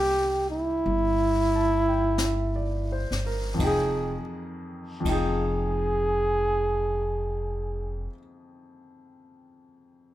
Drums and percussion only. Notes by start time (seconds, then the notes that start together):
0.87 brush sweep
2.18 brush sweep, snare, hi-hat pedal
3.12 snare
3.59 kick, ride
5.05 kick, ride